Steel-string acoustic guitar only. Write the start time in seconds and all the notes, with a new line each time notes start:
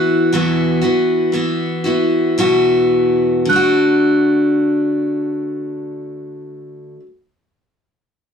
Already playing: E3 B3 E4 F#4
0.33 E2 B2 E3 B3 E4 F#4
0.81 E3 B3 E4 F#4
1.32 E3 B3 E4 F#4
1.84 E3 B3 E4 F#4
2.38 E2 B2 E3 B3 E4 F#4
3.45 D3
3.50 A3 D4
3.56 F#4